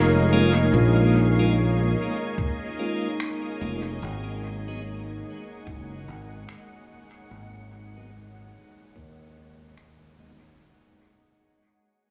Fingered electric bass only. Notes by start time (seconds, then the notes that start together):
Already playing: F1
0.74 A#1
3.61 F1
4.02 G#1
5.67 F#1
6.08 G#1
7.31 G#1
8.96 D#2